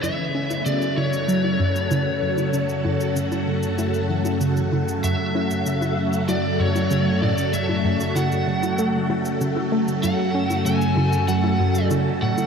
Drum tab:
SH |x--xxx-xx--xx--x|xx-xxx-xxx-xxx-x|x--xxx-xx--xx--x|x--xxx-xx--xx--x|
CG |o--o--o--o--o--o|--o--o--o--o--o-|--o--o--o--o--o-|-o--o--o--o--o--|

SH |x--xxx-xx--xx--x|
CG |o--o--o--o--o--o|